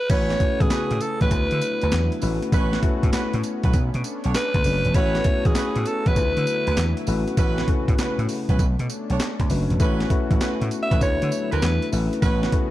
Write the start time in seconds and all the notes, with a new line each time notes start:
Already playing: B4
0.09 A1 C#3 A3 B3 C#4 E4 F#4 B4 C#5, kick, closed hi-hat, crash, tambourine
0.30 snare, closed hi-hat
0.40 A3 C#4 E4 F#4 B4, kick, closed hi-hat
0.60 A1 G#4, kick, closed hi-hat
0.70 C#4 F#4 B4, muted slap bass stroke, snare, clap, closed hi-hat, tambourine
0.91 A2, closed hi-hat
1.01 A4, closed hi-hat, tambourine
1.21 A1 C#4 F#4 B4, kick, closed hi-hat
1.31 D2 D3 F#3 A3 D4 E4 F#4 B4, kick, closed hi-hat, tambourine
1.51 D3, closed hi-hat
1.61 closed hi-hat, tambourine
1.82 D2 E4 F#4 B4, closed hi-hat
1.92 E2, snare, clap, closed hi-hat, tambourine
2.12 closed hi-hat
2.22 A1 A3 C#4 E4 F#4 B4, open hi-hat, tambourine
2.42 closed hi-hat
2.52 A1 C#4 F#4 B4, kick, closed hi-hat, tambourine
2.73 snare, closed hi-hat
2.83 A3 C#4 E4 F#4 B4, kick, closed hi-hat
3.03 A2, kick, closed hi-hat
3.13 C#4 F#4 B4, muted slap bass stroke, snare, clap, closed hi-hat, tambourine
3.33 A2, closed hi-hat
3.43 closed hi-hat, tambourine
3.63 B1 C#4 F#4 B4, kick, closed hi-hat
3.73 B1 A3 D4, kick, closed hi-hat, tambourine
3.94 B2, closed hi-hat
4.04 closed hi-hat, tambourine
4.24 B1 D4 A4 C#5, closed hi-hat
4.34 B4, snare, clap, closed hi-hat, tambourine
4.54 D2, kick, closed hi-hat
4.64 F#1 A3 C#4 D4 F#4 B4, open hi-hat, tambourine
4.85 E1, closed hi-hat
4.94 A1 A3 C#4 E4 F#4 B4 C#5, kick, closed hi-hat, tambourine
5.15 snare, closed hi-hat
5.24 A3 C#4 E4 F#4 C#5, kick, closed hi-hat
5.45 A1 G#4, kick, closed hi-hat
5.55 C#4 F#4 B4, muted slap bass stroke, snare, clap, closed hi-hat, tambourine
5.75 A2, closed hi-hat
5.86 A4, closed hi-hat, tambourine
6.06 A1 C#4 F#4 B4, kick, closed hi-hat
6.16 D2 D3 F#3 A3 D4 E4 F4 B4, kick, closed hi-hat, tambourine
6.23 F#4
6.37 D3, closed hi-hat
6.47 closed hi-hat, tambourine
6.67 D2 E4 F#4 B4, closed hi-hat
6.77 E2, snare, clap, closed hi-hat, tambourine
6.97 closed hi-hat
7.07 A1 C#3 A3 C#4 E4 F#4 B4, open hi-hat, tambourine
7.27 closed hi-hat
7.37 A1 C#4 F#4 B4, kick, closed hi-hat, tambourine
7.58 snare, closed hi-hat
7.68 A3 C#4 E4 F#4 B4, kick, closed hi-hat
7.88 A2, kick, closed hi-hat
7.98 C#4 F#4 B4, muted slap bass stroke, snare, clap, closed hi-hat, tambourine
8.18 A2, closed hi-hat
8.29 open hi-hat, tambourine
8.49 B1 C#4 F#4 B4, kick, closed hi-hat
8.58 B1 A3 C#4 D4, kick, closed hi-hat, tambourine
8.79 B2, closed hi-hat
8.90 closed hi-hat, tambourine
9.09 B1 D4 A4 C#5, closed hi-hat
9.20 snare, clap, closed hi-hat, tambourine
9.40 D2, kick, closed hi-hat
9.50 F#1 A3 C#4 D4 F#4 B4, open hi-hat, tambourine
9.70 E1, closed hi-hat
9.79 A1 A3 C#4 E4 F#4 B4, kick, closed hi-hat, tambourine
10.00 snare, closed hi-hat
10.10 A3 C#4 E4 F#4 B4, kick, closed hi-hat
10.31 A1, kick, closed hi-hat
10.40 C#4 F#4 B4, snare, clap, closed hi-hat, tambourine
10.61 A2, closed hi-hat
10.71 closed hi-hat, tambourine
10.83 E5
10.91 A1 C#4 F#4 B4, kick, closed hi-hat
11.00 D2 D3 F#3 A3 B3 D4 E4 F#4 B4 C#5, kick, closed hi-hat, tambourine
11.22 D3, closed hi-hat
11.32 closed hi-hat, tambourine
11.51 D2 E4 F#4 B4, closed hi-hat
11.62 E2, snare, clap, closed hi-hat, tambourine
11.82 closed hi-hat
11.90 A1 C#3 A3 B3 C#4 E4 F#4 B4, open hi-hat, tambourine
12.13 closed hi-hat
12.22 A1 C#4 F#4 B4, kick, closed hi-hat, tambourine
12.43 snare, closed hi-hat
12.52 A3 C#4 E4 F#4 B4, kick, closed hi-hat